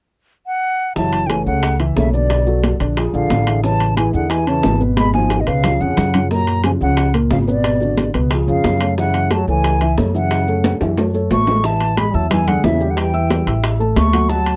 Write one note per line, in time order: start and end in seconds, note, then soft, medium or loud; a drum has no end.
0.47 0.93 F#5 loud
0.96 1.43 F#1 medium
0.96 1.24 E3 medium
0.96 1.27 F#3 medium
0.96 1.24 E4 medium
0.96 1.24 E5 medium
0.96 1.28 A5 loud
0.96 high bongo medium
0.96 high conga soft
0.96 maracas medium
1.13 high bongo soft
1.13 high conga soft
1.13 high timbale medium
1.13 maracas soft
1.25 1.30 D3 medium
1.25 1.45 E3 medium
1.25 1.31 G5 medium
1.30 1.44 A3 medium
1.30 1.44 A4 medium
1.30 1.44 C#5 medium
1.30 1.46 G#5 medium
1.30 high bongo medium
1.30 high conga medium
1.30 high timbale medium
1.30 maracas medium
1.45 1.93 C#2 medium
1.45 1.77 C#3 medium
1.45 1.74 A3 medium
1.45 1.74 A4 medium
1.45 1.74 C#5 medium
1.45 1.77 F#5 medium
1.45 high bongo soft
1.45 high conga soft
1.45 maracas soft
1.63 high bongo medium
1.63 high conga soft
1.63 high timbale loud
1.63 maracas medium
1.80 1.94 E3 medium
1.80 1.94 E4 medium
1.80 1.94 E5 medium
1.80 high conga soft
1.80 high timbale medium
1.80 maracas soft
1.96 2.75 B1 medium
1.96 2.12 C#3 medium
1.96 2.10 A3 medium
1.96 2.11 A4 medium
1.96 2.11 C#5 medium
1.96 2.12 E5 medium
1.96 high bongo medium
1.96 low bongo medium
1.96 high conga medium
1.96 maracas medium
2.13 2.76 B2 medium
2.13 2.41 D3 medium
2.13 2.41 D4 medium
2.13 2.76 D5 medium
2.13 2.41 D5 medium
2.13 high bongo soft
2.13 high conga soft
2.13 maracas soft
2.30 high bongo medium
2.30 high conga soft
2.30 high timbale medium
2.30 maracas medium
2.47 2.74 F#3 medium
2.47 2.74 F#4 medium
2.47 2.74 A4 medium
2.47 high bongo soft
2.47 high conga soft
2.47 maracas soft
2.64 high bongo medium
2.64 high conga medium
2.64 high timbale medium
2.64 maracas medium
2.80 3.11 A#1 medium
2.80 2.94 D3 medium
2.80 2.94 D4 medium
2.80 2.94 D5 medium
2.80 high bongo soft
2.80 high timbale medium
2.80 maracas soft
2.97 3.10 F3 medium
2.97 3.11 F4 medium
2.97 3.11 G#4 medium
2.97 high bongo medium
2.97 high conga soft
2.97 high timbale medium
2.97 maracas medium
3.14 3.29 A#1 medium
3.14 3.60 D3 medium
3.14 3.41 F3 medium
3.14 3.41 F4 medium
3.14 3.41 G#4 medium
3.14 3.60 F5 medium
3.14 high bongo soft
3.14 high conga soft
3.14 maracas soft
3.30 4.08 A1 medium
3.30 high bongo medium
3.30 low bongo medium
3.30 high conga medium
3.30 high timbale medium
3.30 maracas medium
3.47 3.61 E3 medium
3.47 3.61 E4 medium
3.47 3.61 G#4 medium
3.47 high timbale medium
3.47 maracas soft
3.63 3.91 C#3 medium
3.63 3.95 E3 medium
3.63 3.91 C#4 medium
3.63 3.91 C#5 medium
3.63 3.95 A5 loud
3.63 high bongo medium
3.63 high conga soft
3.63 maracas medium
3.80 high bongo soft
3.80 high conga soft
3.80 high timbale medium
3.80 maracas soft
3.97 4.11 E3 medium
3.97 4.13 E3 medium
3.97 4.11 E4 medium
3.97 4.11 G#4 medium
3.97 4.13 G#5 medium
3.97 high bongo medium
3.97 high conga medium
3.97 high timbale medium
3.97 maracas medium
4.13 4.60 E2 medium
4.13 4.33 D3 medium
4.13 4.41 E3 medium
4.13 4.41 E4 medium
4.13 4.42 G#4 medium
4.13 4.32 F#5 medium
4.13 high bongo soft
4.13 high conga soft
4.13 maracas soft
4.30 4.47 E3 medium
4.30 4.49 G#5 medium
4.30 high bongo medium
4.30 high conga soft
4.30 high timbale medium
4.30 maracas medium
4.47 4.61 C#3 medium
4.47 4.81 E3 medium
4.47 4.61 C#4 medium
4.47 4.61 C#5 medium
4.47 4.81 A5 loud
4.47 high conga soft
4.47 high timbale medium
4.47 maracas soft
4.63 5.42 G#1 medium
4.63 4.77 E3 medium
4.63 4.78 E4 medium
4.63 4.78 G#4 medium
4.63 high bongo medium
4.63 low bongo medium
4.63 high conga medium
4.63 low timbale medium
4.63 maracas medium
4.80 5.08 B2 medium
4.80 5.08 B3 medium
4.80 5.08 B4 medium
4.80 high bongo soft
4.80 high conga soft
4.80 maracas soft
4.97 5.13 G#3 medium
4.97 5.13 B5 loud
4.97 high bongo medium
4.97 high conga medium
4.97 high timbale medium
4.97 maracas medium
5.14 5.41 D#3 medium
5.14 5.42 F3 medium
5.14 5.41 D#4 medium
5.14 5.42 F#4 medium
5.14 5.42 G#5 medium
5.14 high bongo soft
5.14 high conga loud
5.14 maracas soft
5.30 high bongo medium
5.30 high timbale medium
5.30 maracas medium
5.41 5.50 B2 medium
5.41 5.49 D#5 medium
5.47 5.78 C#2 medium
5.47 5.61 B2 medium
5.47 5.82 C#3 medium
5.47 5.61 B3 medium
5.47 5.61 B4 medium
5.47 5.83 F5 medium
5.47 high bongo soft
5.47 high timbale medium
5.47 maracas soft
5.64 5.78 F3 medium
5.64 5.78 F4 medium
5.64 5.78 G#4 medium
5.64 high bongo medium
5.64 low conga medium
5.64 high timbale medium
5.64 maracas medium
5.80 5.96 F2 medium
5.80 6.31 C#3 medium
5.80 6.08 F3 medium
5.80 6.08 C#4 medium
5.80 6.08 G#4 medium
5.80 6.31 F#5 medium
5.80 high bongo soft
5.80 maracas soft
5.97 6.75 F#2 medium
5.97 high bongo medium
5.97 low bongo medium
5.97 low conga medium
5.97 high timbale medium
5.97 maracas medium
6.14 6.28 C#3 medium
6.14 6.28 C#4 medium
6.14 6.28 F4 medium
6.14 low conga medium
6.14 high timbale medium
6.14 maracas soft
6.31 6.58 A#2 medium
6.31 6.63 F#3 medium
6.31 6.59 A#3 medium
6.31 6.59 A#4 medium
6.31 6.62 A#5 loud
6.31 high bongo medium
6.31 high conga soft
6.31 maracas medium
6.47 high bongo soft
6.47 high conga soft
6.47 high timbale medium
6.47 maracas soft
6.64 6.78 C#3 medium
6.64 6.72 F3 medium
6.64 6.78 C#4 medium
6.64 6.78 F4 medium
6.64 6.71 G#5 medium
6.64 high bongo medium
6.64 high conga medium
6.64 high timbale medium
6.64 maracas medium
6.81 7.27 C#2 medium
6.81 7.08 C#3 medium
6.81 7.12 C#3 medium
6.81 7.09 F3 medium
6.81 7.08 C#4 medium
6.81 7.13 F#5 medium
6.81 high bongo soft
6.81 high conga soft
6.81 maracas soft
6.97 high bongo medium
6.97 high conga soft
6.97 high timbale medium
6.97 maracas medium
7.14 7.28 A#2 medium
7.14 7.28 A#3 medium
7.14 7.28 A#4 medium
7.14 high conga soft
7.14 high timbale medium
7.14 maracas soft
7.31 8.09 G#1 medium
7.31 7.45 C#3 medium
7.31 7.40 C#3 medium
7.31 7.45 C#4 medium
7.31 7.45 F4 medium
7.31 7.38 F5 medium
7.31 high bongo medium
7.31 low bongo medium
7.31 high conga medium
7.31 low timbale medium
7.31 maracas medium
7.47 7.75 B2 medium
7.47 8.11 B2 medium
7.47 7.75 B3 medium
7.47 7.75 B4 medium
7.47 8.11 D5 medium
7.47 high bongo soft
7.47 high conga soft
7.47 maracas soft
7.64 high bongo medium
7.64 high conga soft
7.64 high timbale medium
7.64 maracas medium
7.81 8.08 D3 medium
7.81 8.08 D4 medium
7.81 8.08 F#4 medium
7.81 high bongo soft
7.81 high conga soft
7.81 maracas soft
7.97 high bongo medium
7.97 high conga medium
7.97 high timbale medium
7.97 maracas medium
8.14 8.45 C#2 medium
8.14 8.28 B2 medium
8.14 8.28 B3 medium
8.14 8.28 B4 medium
8.14 high bongo soft
8.14 high conga soft
8.14 high timbale medium
8.14 maracas soft
8.31 8.45 F3 medium
8.31 8.45 F4 medium
8.31 8.45 G#4 medium
8.31 high bongo medium
8.31 high conga soft
8.31 high timbale medium
8.31 maracas medium
8.47 8.63 F2 medium
8.47 8.94 C#3 medium
8.47 8.75 F3 medium
8.47 8.75 F4 medium
8.47 8.75 G#4 medium
8.47 8.95 F5 medium
8.47 high bongo soft
8.47 high conga soft
8.47 maracas soft
8.64 9.42 F#2 medium
8.64 high bongo medium
8.64 low bongo medium
8.64 high conga medium
8.64 high timbale medium
8.64 maracas medium
8.81 8.95 A3 medium
8.81 8.95 A4 medium
8.81 8.95 C#5 medium
8.81 high timbale medium
8.81 maracas soft
8.98 9.33 C#3 medium
8.98 9.25 E3 medium
8.98 9.25 E4 medium
8.98 9.26 E5 medium
8.98 9.33 F#5 medium
8.98 high bongo medium
8.98 high conga soft
8.98 maracas medium
9.14 high bongo soft
9.14 high conga soft
9.14 high timbale medium
9.14 maracas soft
9.31 9.48 F#3 medium
9.31 9.45 A3 medium
9.31 9.45 A4 medium
9.31 9.45 C#5 medium
9.31 9.48 A5 medium
9.31 high bongo medium
9.31 high conga soft
9.31 high timbale medium
9.31 maracas medium
9.47 9.94 C#2 medium
9.47 9.95 E3 medium
9.47 9.75 A3 medium
9.47 9.75 A4 medium
9.47 9.75 C#5 medium
9.47 9.95 G#5 loud
9.47 high bongo soft
9.47 high conga soft
9.47 maracas soft
9.64 high bongo medium
9.64 high conga soft
9.64 high timbale medium
9.64 maracas medium
9.81 9.95 E3 medium
9.81 9.95 E4 medium
9.81 9.95 E5 medium
9.81 high conga soft
9.81 high timbale medium
9.81 maracas soft
9.98 10.75 F#2 medium
9.98 10.11 A3 medium
9.98 10.12 A4 medium
9.98 10.12 C#5 medium
9.98 high bongo medium
9.98 low bongo medium
9.98 high conga medium
9.98 maracas medium
10.15 10.77 C#3 medium
10.15 10.42 E3 medium
10.15 10.42 E4 medium
10.15 10.42 E5 medium
10.15 10.77 F#5 medium
10.15 high bongo soft
10.15 high conga soft
10.15 maracas soft
10.31 high bongo medium
10.31 high conga soft
10.31 high timbale medium
10.31 maracas medium
10.48 10.75 A3 medium
10.48 10.75 A4 medium
10.48 10.76 C#5 medium
10.48 high bongo soft
10.48 high conga soft
10.48 maracas soft
10.64 high bongo medium
10.64 high conga medium
10.64 high timbale medium
10.64 maracas medium
10.81 11.27 F#2 medium
10.81 10.95 E3 medium
10.81 10.95 E4 medium
10.81 10.95 E5 medium
10.81 high bongo loud
10.81 high conga soft
10.81 high timbale medium
10.81 maracas soft
10.98 11.11 A3 medium
10.98 11.12 A4 medium
10.98 11.12 C#5 medium
10.98 low bongo medium
10.98 high conga soft
10.98 low timbale medium
10.98 maracas medium
11.14 11.41 A3 medium
11.14 11.42 A4 medium
11.14 11.42 C#5 medium
11.14 high conga soft
11.14 maracas soft
11.31 12.08 A1 medium
11.31 11.66 A3 medium
11.31 11.67 C#6 loud
11.31 high conga medium
11.31 low timbale medium
11.31 maracas medium
11.47 11.61 G#3 medium
11.47 11.61 G#4 medium
11.47 11.62 A4 medium
11.47 low bongo loud
11.47 low timbale medium
11.47 maracas soft
11.64 11.91 E3 medium
11.64 11.99 E3 medium
11.64 11.91 E4 medium
11.64 11.92 E5 medium
11.64 12.00 A5 loud
11.64 high bongo medium
11.64 high conga soft
11.64 maracas medium
11.80 high bongo soft
11.80 high conga soft
11.80 high timbale medium
11.80 maracas soft
11.97 12.16 G#3 medium
11.97 12.11 G#3 medium
11.97 12.11 G#4 medium
11.97 12.12 G#5 medium
11.97 12.16 B5 medium
11.97 high bongo medium
11.97 high conga medium
11.97 high timbale medium
11.97 maracas medium
12.14 12.60 E2 medium
12.14 12.30 F#3 medium
12.14 12.41 E4 medium
12.14 12.41 E5 medium
12.14 12.31 A5 medium
12.14 12.41 E6 medium
12.14 high bongo soft
12.14 high conga soft
12.14 maracas soft
12.30 12.49 E3 medium
12.30 12.49 G#5 medium
12.30 high bongo medium
12.30 high conga soft
12.30 low conga medium
12.30 high timbale medium
12.30 maracas medium
12.47 12.66 D3 medium
12.47 12.61 G#3 medium
12.47 12.61 G#4 medium
12.47 12.66 F#5 medium
12.47 12.61 G#5 medium
12.47 high conga soft
12.47 low conga medium
12.47 high timbale medium
12.47 maracas soft
12.64 13.41 E2 medium
12.64 12.92 C#3 medium
12.64 12.77 E3 medium
12.64 12.78 E4 medium
12.64 12.78 E5 medium
12.64 12.92 E5 medium
12.64 high bongo medium
12.64 low bongo medium
12.64 high conga medium
12.64 low timbale medium
12.64 maracas medium
12.80 13.08 G3 medium
12.80 13.08 G4 medium
12.80 13.08 G5 medium
12.80 high bongo soft
12.80 high conga soft
12.80 maracas soft
12.90 12.99 D3 medium
12.90 12.99 F#5 medium
12.97 13.64 E3 medium
12.97 13.64 G5 medium
12.97 high bongo medium
12.97 high conga soft
12.97 high timbale medium
12.97 maracas medium
13.13 13.27 E4 medium
13.13 13.27 E5 medium
13.13 13.27 E6 medium
13.13 high bongo soft
13.13 high conga soft
13.13 maracas soft
13.30 13.44 G3 medium
13.30 13.44 G4 medium
13.30 high bongo medium
13.30 high conga medium
13.30 high timbale medium
13.30 maracas medium
13.47 13.93 A1 medium
13.47 13.74 E4 medium
13.47 13.74 E5 medium
13.47 13.74 E6 medium
13.47 high bongo soft
13.47 high timbale medium
13.47 maracas soft
13.64 high bongo medium
13.64 high conga soft
13.64 high timbale loud
13.64 maracas medium
13.80 14.07 A3 medium
13.80 14.07 A4 medium
13.80 14.07 A5 medium
13.80 high bongo soft
13.80 high conga soft
13.80 maracas soft
13.96 14.56 D2 medium
13.96 14.32 A3 medium
13.96 14.31 C#6 loud
13.96 high bongo medium
13.96 low bongo medium
13.96 high conga medium
13.96 high timbale medium
13.96 maracas medium
14.13 14.27 F#3 medium
14.13 14.27 F#4 medium
14.13 14.27 F#5 medium
14.13 high conga medium
14.13 high timbale medium
14.13 maracas soft
14.29 14.56 F#3 medium
14.29 14.56 F#4 medium
14.29 14.56 F#5 medium
14.29 14.56 A5 loud
14.29 high bongo medium
14.29 high conga soft
14.29 maracas medium
14.46 high bongo soft
14.46 high conga soft
14.46 high timbale medium
14.46 maracas soft